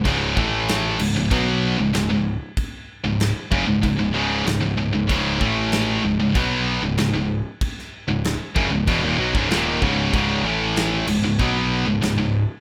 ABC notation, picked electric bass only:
X:1
M:4/4
L:1/16
Q:1/4=95
K:C#m
V:1 name="Picked electric bass" clef=bass
C,,,2 A,,,4 C,,, C,,, B,,,3 C,,, C,,, C,,,2 z | z3 C,,,2 z F,,, C,,, C,,, C,,, C,,,2 C,,, C,,, C,,, C,,, | C,,,2 A,,,4 C,,, C,,, B,,,3 C,,, C,,, C,,,2 z | z3 C,,,2 z F,,, C,,, E,,, D,,, B,,, C,,, D,,,2 C,,,2 |
C,,,2 A,,,4 C,,, C,,, B,,,3 C,,, C,,, C,,,2 z |]